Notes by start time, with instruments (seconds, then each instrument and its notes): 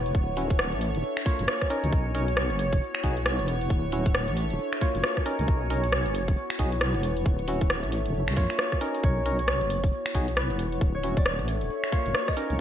Already playing: wobble bass E1, ambient pad E4 B4 F#5, analog synth pad C#5
0.06 closed hi-hat, tambourine
0.14 wobble bass D1, ambient pad D4, kick, tambourine
0.37 synth stab C#4 E4 F#4, open hi-hat, tambourine
0.50 kick, closed hi-hat, tambourine
0.56 ambient pad A4 E5, cross-stick, tambourine
0.72 wobble bass A1, closed hi-hat
0.81 open hi-hat, tambourine
0.95 wobble bass D1, closed hi-hat, tambourine
1.04 ambient pad F#4, tambourine
1.17 finger snap, closed hi-hat
1.26 synth stab A#3 F4 C#5, kick, open hi-hat, tambourine
1.39 wobble bass F#1, closed hi-hat, tambourine
1.44 ambient pad C#5 G#5, cross-stick, tambourine
1.61 kick, cross-stick, closed hi-hat
1.70 synth stab C#4 D#4 A#4, open hi-hat, tambourine
1.84 wobble bass C#2, closed hi-hat, tambourine
1.92 wobble bass B1, ambient pad B3, kick, tambourine
2.15 synth stab C#4 D#4 A#4, open hi-hat, tambourine
2.28 closed hi-hat, tambourine
2.37 cross-stick, tambourine
2.50 wobble bass F#1, closed hi-hat
2.59 ambient pad E4, open hi-hat, tambourine
2.73 wobble bass E1, kick, closed hi-hat, tambourine
2.81 tambourine
2.95 ambient pad B4, finger snap, closed hi-hat
3.04 wobble bass B1, synth stab D#4 F#4 G#4, kick, open hi-hat, tambourine
3.10 ambient pad F#5
3.17 closed hi-hat, tambourine
3.26 cross-stick, tambourine
3.39 wobble bass E1, closed hi-hat
3.48 open hi-hat, tambourine
3.61 closed hi-hat, tambourine
3.70 wobble bass D1, ambient pad D4, kick, tambourine
3.92 synth stab C#4 E4 F#4, open hi-hat, tambourine
4.06 kick, closed hi-hat, tambourine
4.12 ambient pad A4 E5, cross-stick, tambourine
4.28 wobble bass A1, closed hi-hat
4.37 open hi-hat, tambourine
4.50 wobble bass D1, closed hi-hat, tambourine
4.59 ambient pad F#4, tambourine
4.73 ambient pad C#5, finger snap, closed hi-hat
4.81 synth stab A#3 F4 C#5, kick, open hi-hat, tambourine
4.95 wobble bass F#1, closed hi-hat, tambourine
5.00 ambient pad G#5, cross-stick, tambourine
5.17 kick, cross-stick, closed hi-hat
5.26 synth stab C#4 D#4 A#4, open hi-hat, tambourine
5.39 wobble bass C#2, closed hi-hat, tambourine
5.48 wobble bass B1, ambient pad B3, kick, tambourine
5.70 synth stab C#4 D#4 A#4, open hi-hat, tambourine
5.84 closed hi-hat, tambourine
5.92 cross-stick, tambourine
6.06 wobble bass F#1, closed hi-hat
6.14 ambient pad E4, open hi-hat, tambourine
6.28 wobble bass E1, kick, closed hi-hat, tambourine
6.37 ambient pad B4, tambourine
6.50 finger snap, closed hi-hat
6.59 wobble bass B1, synth stab D#4 F#4 G#4, kick, open hi-hat, tambourine
6.66 ambient pad F#5
6.72 closed hi-hat, tambourine
6.81 cross-stick, tambourine
6.94 wobble bass E1, closed hi-hat
7.03 open hi-hat, tambourine
7.17 closed hi-hat, tambourine
7.26 wobble bass D1, ambient pad D4, kick, tambourine
7.39 closed hi-hat
7.48 synth stab C#4 E4 F#4, open hi-hat, tambourine
7.61 ambient pad A4, kick, closed hi-hat, tambourine
7.67 ambient pad E5, cross-stick, tambourine
7.83 wobble bass A1, closed hi-hat
7.92 open hi-hat, tambourine
8.06 wobble bass D1, closed hi-hat, tambourine
8.14 wobble bass F#1, ambient pad F#4, tambourine
8.28 wobble bass C#2, finger snap, closed hi-hat
8.37 wobble bass F#2, synth stab A#3 F4 C#5, kick, open hi-hat, tambourine
8.50 finger snap, closed hi-hat, tambourine
8.55 ambient pad C#5 G#5, cross-stick, tambourine
8.72 kick, cross-stick, closed hi-hat
8.81 synth stab C#4 D#4 A#4, open hi-hat, tambourine
8.95 closed hi-hat, tambourine
9.03 wobble bass B1, ambient pad B3, analog synth pad C#5, harp C#5, kick, tambourine
9.26 synth stab C#4 D#4 A#4, open hi-hat, tambourine
9.39 harp C#5, closed hi-hat, tambourine
9.48 cross-stick, tambourine
9.61 wobble bass F#1, closed hi-hat
9.70 ambient pad E4, open hi-hat, tambourine
9.84 wobble bass E1, kick, closed hi-hat, tambourine
9.92 tambourine
10.06 finger snap, closed hi-hat
10.15 wobble bass B1, synth stab D#4 F#4 G#4, kick, open hi-hat, tambourine
10.21 ambient pad B4 F#5
10.28 closed hi-hat, tambourine
10.37 harp B4, cross-stick, tambourine
10.50 wobble bass E1, closed hi-hat
10.59 open hi-hat, tambourine
10.72 closed hi-hat, tambourine
10.81 wobble bass D1, ambient pad D4, kick, tambourine
10.95 harp C#5
11.03 synth stab C#4 E4 F#4, open hi-hat, tambourine
11.17 harp D5, kick, closed hi-hat, tambourine
11.22 ambient pad A4 E5, cross-stick, tambourine
11.39 wobble bass A1, closed hi-hat
11.48 open hi-hat, tambourine
11.61 wobble bass D1, closed hi-hat, tambourine
11.70 ambient pad F#4, tambourine
11.84 finger snap, closed hi-hat
11.92 synth stab A#3 F4 C#5, harp F5, kick, open hi-hat, tambourine
12.06 wobble bass F#1, closed hi-hat, tambourine
12.11 ambient pad C#5 G#5, cross-stick, tambourine
12.28 harp D#5, kick, cross-stick, closed hi-hat
12.37 synth stab C#4 D#4 A#4, open hi-hat, tambourine
12.50 wobble bass C#2, closed hi-hat, tambourine